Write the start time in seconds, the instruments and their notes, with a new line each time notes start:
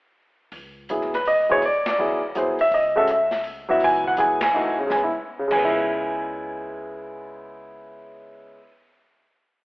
0.52 upright bass C#2, kick, open hi-hat
0.89 grand piano F#3 B3 E4 G#4, closed hi-hat
1.01 snare
1.13 grand piano B4, snare
1.25 grand piano D#5, open hi-hat
1.49 grand piano F#3 B3 E4 G#4 C#5
1.62 upright bass D2, grand piano D5, kick, open hi-hat
1.86 grand piano D5, snare, ride
1.98 grand piano F#3 B3 E4 G#4
2.35 grand piano F#3 B3 E4 G#4 C5, closed hi-hat
2.59 grand piano E5, muted upright bass stroke, open hi-hat
2.71 upright bass C#2, grand piano D#5, kick, open hi-hat
2.96 grand piano G#3 C#4 F#4 A4 E5
3.07 grand piano E5, closed hi-hat
3.31 snare, open hi-hat
3.44 open hi-hat
3.69 grand piano F#3 B3 E4 F#4 E5
3.80 upright bass C#2, kick, open hi-hat
3.84 grand piano G#5
4.04 grand piano F#5, kick
4.17 grand piano F#3 B3 E4 G#4 G#5, closed hi-hat
4.41 grand piano G#5, snare, ride
4.53 upright bass C2, grand piano E3 A3 D#4 F#4
4.79 grand piano C#3
4.87 upright bass C#2, grand piano G#3, kick, snare
4.92 grand piano B3 G#5
5.04 grand piano E4
5.39 grand piano C#3
5.48 upright bass C#2, grand piano G#3, kick, crash
5.52 grand piano G#5
5.56 grand piano B3
5.64 grand piano E4